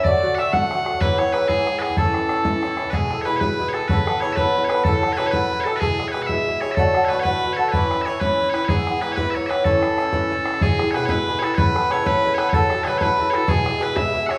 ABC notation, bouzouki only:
X:1
M:6/8
L:1/8
Q:3/8=125
K:A
V:1 name="Bouzouki"
[A,,D,A,F] [D,A,F] [A,,D,A,F] [A,,D,A,F] [A,,D,A,F] [D,A,F] | [G,,E,B,E] [E,B,E] [G,,E,B,E] [G,,E,B,E] [G,,E,B,E] [E,B,E] | [A,,E,CE] [E,CE] [A,,E,CE] [A,,E,CE] [A,,E,CE] [E,CE] | [B,,G,EG] [G,EG] [B,,G,EG] [B,,G,EG] [B,,G,EG] [G,EG] |
[C,B,EA] [B,EA] [C,B,EA] [C,B,EA] [C,B,EA] [B,EA] | [C,F,EA] [F,EA] [C,F,EA] [C,F,EA] [C,F,EA] [F,EA] | [B,,G,EG] [G,EG] [B,,G,EG] [B,,G,EG] [B,,G,EG] [G,EG] | [A,,D,A,F] [D,A,F] [A,,D,A,F] [A,,D,A,F] [A,,D,A,F] [D,A,F] |
[A,,E,CE] [E,CE] [A,,E,CE] [A,,E,CE] [A,,E,CE] [E,CE] | [G,,E,B,E] [E,B,E] [G,,E,B,E] [G,,E,B,E] [G,,E,B,E] [E,B,E] | [A,,E,CE] [E,CE] [A,,E,CE] [A,,E,CE] [A,,E,CE] [E,CE] | [B,,G,EG] [G,EG] [B,,G,EG] [B,,G,EG] [B,,G,EG] [G,EG] |
[C,B,EA] [B,EA] [C,B,EA] [C,B,EA] [C,B,EA] [B,EA] | [C,F,EA] [F,EA] [C,F,EA] [C,F,EA] [C,F,EA] [F,EA] | [B,,G,EG] [G,EG] [B,,G,EG] [B,,G,EG] [B,,G,EG] [G,EG] |]